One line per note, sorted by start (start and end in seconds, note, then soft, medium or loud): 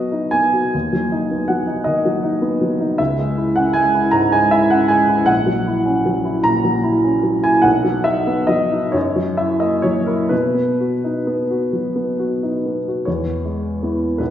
0.00 0.70 B2 soft
0.00 0.76 F#3 soft
0.00 0.33 B3 soft
0.00 0.25 F#4 soft
0.00 0.33 D#5 medium
0.12 0.46 D#4 soft
0.31 0.66 B3 soft
0.31 1.48 G#5 medium
0.53 0.74 F#4 soft
0.74 2.96 D#2 soft
0.93 1.23 F#3 soft
1.12 1.42 D#4 soft
1.31 1.61 B3 soft
1.48 1.79 F#3 soft
1.48 1.86 F#5 soft
1.67 1.97 D#4 soft
1.84 2.16 D#3 soft
1.84 2.23 D#5 medium
2.05 2.35 F#3 soft
2.24 2.54 D#4 soft
2.42 2.73 B3 soft
2.61 2.92 F#3 soft
2.80 3.00 D#4 soft
2.98 5.25 C#2 soft
2.98 3.56 E5 medium
3.19 3.49 G#3 soft
3.37 3.68 E4 soft
3.56 3.87 C#4 soft
3.56 3.75 F#5 medium
3.73 4.06 G#3 soft
3.73 4.13 G#5 medium
3.94 4.25 E4 soft
4.11 4.44 G#2 soft
4.11 4.32 A#5 medium
4.32 4.64 G#3 soft
4.32 4.52 G#5 medium
4.51 4.84 E4 soft
4.51 4.71 E5 medium
4.70 5.03 C#4 soft
4.70 4.90 F#5 medium
4.88 5.21 G#3 soft
4.88 5.28 G#5 medium
5.09 5.29 E4 soft
5.24 7.58 A#1 soft
5.24 6.42 F#5 medium
5.46 5.78 F#3 soft
5.67 5.98 E4 soft
5.86 6.17 C#4 soft
6.06 6.36 F#3 soft
6.25 6.56 E4 soft
6.44 6.76 A#2 soft
6.44 7.44 A#5 medium
6.64 6.96 F#3 soft
6.83 7.16 E4 soft
7.04 7.37 C#4 soft
7.23 7.56 F#3 soft
7.44 7.65 E4 soft
7.44 7.65 G#5 medium
7.62 8.90 B1 soft
7.62 8.05 F#5 medium
7.85 8.19 F#3 soft
8.04 8.41 D#4 soft
8.04 8.49 E5 medium
8.27 8.63 B3 soft
8.47 8.85 F#3 soft
8.47 8.93 D#5 medium
8.72 8.94 D#4 soft
8.92 10.27 F#2 medium
8.92 9.38 C#5 medium
9.16 9.52 F#3 soft
9.37 9.75 E4 soft
9.37 9.60 E5 medium
9.60 9.97 A#3 soft
9.60 9.83 D#5 medium
9.82 10.21 F#3 soft
9.82 10.06 C#5 medium
10.06 10.31 E4 soft
10.06 10.31 A#4 soft
10.29 13.02 B2 soft
10.29 11.72 B4 medium
10.54 10.93 B3 soft
10.80 11.18 F#4 soft
11.04 11.42 D#4 soft
11.27 11.64 B3 soft
11.51 11.87 F#4 soft
11.73 12.10 F#3 soft
11.96 12.32 B3 soft
12.19 12.56 F#4 soft
12.43 12.79 D#4 soft
12.66 12.99 B3 soft
12.88 13.07 F#4 soft
13.05 14.17 E2 soft
13.05 14.20 C#5 soft
13.45 14.05 G#3 soft
13.83 14.17 B3 soft
13.83 14.17 E4 soft
14.18 14.30 B1 soft
14.18 14.30 B4 soft